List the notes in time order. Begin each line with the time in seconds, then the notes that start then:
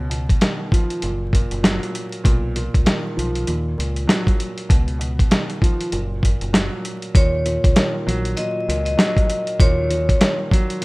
Already playing: C#2 B2
0.10 B2, closed hi-hat
0.29 kick, closed hi-hat
0.41 D#3, snare, closed hi-hat
0.72 F3, kick, closed hi-hat
0.90 closed hi-hat
1.02 F#1 A#2, closed hi-hat
1.33 A#2, kick, closed hi-hat
1.51 F#1, closed hi-hat
1.63 F#3, snare, closed hi-hat
1.83 closed hi-hat
1.95 closed hi-hat
2.12 closed hi-hat
2.24 B1 A#2, kick, closed hi-hat
2.56 A#2, closed hi-hat
2.74 C#2, kick, closed hi-hat
2.86 D#3, snare, closed hi-hat
3.17 B1 F3, closed hi-hat
3.35 closed hi-hat
3.47 D#2 A#2, closed hi-hat
3.78 C#2 A#2, closed hi-hat
3.96 closed hi-hat
4.07 F#3, snare, closed hi-hat
4.27 kick, closed hi-hat
4.40 closed hi-hat
4.58 closed hi-hat
4.69 C#2 B2, kick, closed hi-hat
4.88 closed hi-hat
4.99 B2, closed hi-hat
5.19 kick, closed hi-hat
5.31 D#3, snare, closed hi-hat
5.50 closed hi-hat
5.62 F3, kick, closed hi-hat
5.81 closed hi-hat
5.92 F#1 A#2, closed hi-hat
6.23 A#2, kick, closed hi-hat
6.41 F#1, closed hi-hat
6.53 F#3, snare, closed hi-hat
6.85 closed hi-hat
7.02 closed hi-hat
7.15 D#2 A#2 C#5, kick, closed hi-hat
7.46 A#2, closed hi-hat
7.64 C#2, kick, closed hi-hat
7.75 D#3, snare, closed hi-hat
8.07 A#1 F#3, closed hi-hat
8.25 closed hi-hat
8.37 A#2 D#5, closed hi-hat
8.68 C#2 A#2, closed hi-hat
8.86 D#5, closed hi-hat
8.97 F#3, snare, closed hi-hat
9.17 kick, closed hi-hat
9.30 closed hi-hat
9.47 closed hi-hat
9.60 D#2 A#2 C#5, kick, closed hi-hat
9.90 A#2, closed hi-hat
10.09 kick, closed hi-hat
10.21 D#3, snare, closed hi-hat
10.51 F#3, kick, closed hi-hat
10.70 closed hi-hat
10.81 A#2